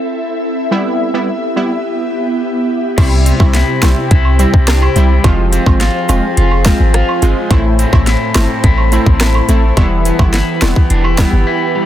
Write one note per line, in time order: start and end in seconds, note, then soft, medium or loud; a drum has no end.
0.00 0.67 C4 medium
0.00 2.94 E4 medium
0.00 0.69 A4 medium
0.00 2.94 E5 medium
0.71 1.10 G3 medium
0.71 2.95 B3 medium
0.71 1.10 B3 medium
0.71 1.11 E4 loud
0.71 2.95 G4 medium
1.14 1.30 G3 medium
1.14 1.30 B3 medium
1.14 1.30 E4 medium
1.56 1.72 G3 medium
1.56 1.72 B3 medium
1.56 1.72 E4 medium
2.98 3.32 C2 loud
2.98 5.24 C3 medium
2.98 3.37 G3 medium
2.98 3.37 C4 medium
2.98 5.22 E4 medium
2.98 3.37 E4 loud
2.98 5.22 G4 medium
2.98 5.22 C5 medium
2.98 5.22 G5 medium
2.98 kick loud
2.98 closed hi-hat medium
2.98 crash loud
2.98 high woodblock medium
3.26 3.82 C4 medium
3.26 closed hi-hat medium
3.26 cabasa medium
3.40 3.63 C2 loud
3.40 3.56 G3 medium
3.40 3.56 C4 medium
3.40 3.56 E4 medium
3.40 kick medium
3.40 high woodblock medium
3.54 4.10 E4 medium
3.54 snare medium
3.54 closed hi-hat medium
3.82 3.94 B1 medium
3.82 3.98 G3 medium
3.82 3.99 C4 medium
3.82 4.39 C4 medium
3.82 3.99 E4 medium
3.82 cross-stick medium
3.82 snare loud
3.82 closed hi-hat medium
3.82 cabasa medium
3.82 high woodblock medium
4.11 4.46 C2 loud
4.11 4.67 E4 medium
4.11 kick loud
4.11 closed hi-hat medium
4.25 high woodblock medium
4.39 4.55 G3 medium
4.39 4.55 C4 medium
4.39 5.52 C4 medium
4.39 4.55 E4 medium
4.39 closed hi-hat soft
4.39 cabasa medium
4.54 4.88 C2 medium
4.54 kick medium
4.68 4.82 D4 medium
4.68 cross-stick loud
4.68 cross-stick medium
4.68 snare loud
4.68 closed hi-hat medium
4.82 5.30 E4 medium
4.82 high woodblock medium
4.96 5.19 C2 medium
4.96 5.12 G3 medium
4.96 5.30 G3 medium
4.96 5.12 C4 medium
4.96 5.12 E4 medium
4.96 closed hi-hat medium
4.96 cabasa medium
5.24 5.59 F1 loud
5.24 7.51 F3 medium
5.24 5.63 G#3 medium
5.24 5.63 C4 medium
5.24 7.48 F4 medium
5.24 5.63 F4 loud
5.24 7.48 G#4 medium
5.24 9.73 C5 medium
5.24 7.48 G#5 medium
5.24 kick loud
5.24 closed hi-hat medium
5.24 high woodblock medium
5.53 6.09 C4 medium
5.53 closed hi-hat medium
5.53 cabasa medium
5.66 5.90 G#1 medium
5.66 5.82 G#3 medium
5.66 5.83 C4 medium
5.66 5.83 F4 medium
5.66 kick loud
5.66 high woodblock medium
5.81 6.36 F4 medium
5.81 snare medium
5.81 closed hi-hat medium
6.09 6.21 E1 medium
6.09 6.25 G#3 medium
6.09 6.25 C4 medium
6.09 6.65 C4 medium
6.09 6.25 F4 medium
6.09 closed hi-hat medium
6.09 cabasa medium
6.09 high woodblock medium
6.37 6.72 F1 loud
6.37 6.93 F4 medium
6.37 closed hi-hat medium
6.51 high woodblock medium
6.65 6.82 G#3 medium
6.65 6.82 C4 medium
6.65 7.79 C4 medium
6.65 6.82 F4 medium
6.65 kick loud
6.65 cross-stick loud
6.65 snare loud
6.65 closed hi-hat soft
6.65 cabasa medium
6.80 7.03 G#1 loud
6.94 7.56 F4 medium
6.94 cross-stick loud
6.94 closed hi-hat medium
7.09 high woodblock medium
7.22 7.34 G1 loud
7.22 7.38 G#3 medium
7.22 7.56 G#3 medium
7.22 7.38 C4 medium
7.22 7.38 F4 medium
7.22 closed hi-hat medium
7.22 cabasa medium
7.50 7.85 A1 loud
7.50 9.77 A2 medium
7.50 7.90 A3 medium
7.50 7.90 C4 medium
7.50 11.86 E4 medium
7.50 7.90 E4 loud
7.50 9.75 A4 medium
7.50 9.75 A5 medium
7.50 kick loud
7.50 closed hi-hat medium
7.50 high woodblock medium
7.79 8.34 C4 medium
7.79 closed hi-hat medium
7.79 cabasa medium
7.93 8.16 A1 loud
7.93 8.09 A3 medium
7.93 8.09 C4 medium
7.93 8.09 E4 medium
7.93 kick medium
7.93 high woodblock medium
8.07 8.63 E4 medium
8.07 snare medium
8.07 closed hi-hat medium
8.35 8.47 G1 medium
8.35 8.51 A3 medium
8.35 8.51 C4 medium
8.35 8.91 C4 medium
8.35 8.52 E4 medium
8.35 cross-stick medium
8.35 snare loud
8.35 closed hi-hat medium
8.35 cabasa medium
8.35 high woodblock medium
8.64 8.98 A1 loud
8.64 9.20 E4 medium
8.64 kick medium
8.64 closed hi-hat medium
8.78 high woodblock medium
8.92 9.08 A3 medium
8.92 9.08 C4 medium
8.92 9.83 C4 medium
8.92 9.08 E4 medium
8.92 closed hi-hat soft
8.92 cabasa medium
9.06 9.41 A1 loud
9.06 kick medium
9.20 10.33 E4 medium
9.20 cross-stick loud
9.20 cross-stick medium
9.20 snare loud
9.20 closed hi-hat medium
9.35 high woodblock medium
9.48 9.72 A1 medium
9.48 9.64 A3 medium
9.48 9.83 A3 medium
9.48 9.65 C4 medium
9.48 9.65 E4 medium
9.48 closed hi-hat medium
9.48 cabasa medium
9.77 10.12 E1 loud
9.77 11.86 E3 medium
9.77 10.16 G3 medium
9.77 10.16 B3 medium
9.77 10.16 E4 loud
9.77 11.86 G4 medium
9.77 11.86 B4 medium
9.77 11.86 G5 medium
9.77 kick loud
9.77 closed hi-hat medium
9.77 high woodblock medium
10.05 10.61 B3 medium
10.05 closed hi-hat medium
10.05 cabasa medium
10.19 10.42 G1 loud
10.19 10.35 G3 medium
10.19 10.36 B3 medium
10.19 10.36 E4 medium
10.19 kick medium
10.19 high woodblock medium
10.34 10.90 E4 medium
10.34 snare medium
10.34 closed hi-hat medium
10.62 10.73 E1 medium
10.62 10.78 G3 medium
10.62 10.78 B3 medium
10.62 11.17 B3 medium
10.62 10.78 E4 medium
10.62 cross-stick loud
10.62 snare loud
10.62 closed hi-hat medium
10.62 cabasa medium
10.62 high woodblock medium
10.76 kick loud
10.90 11.25 E1 loud
10.90 11.04 D4 medium
10.90 closed hi-hat medium
11.04 11.46 E4 medium
11.04 high woodblock medium
11.18 11.34 G3 medium
11.18 11.86 B3 medium
11.18 11.35 B3 medium
11.18 11.35 E4 medium
11.18 kick loud
11.18 cross-stick loud
11.18 snare loud
11.18 closed hi-hat soft
11.18 cabasa medium
11.33 11.44 G1 medium
11.47 11.86 E4 medium
11.75 11.86 G3 medium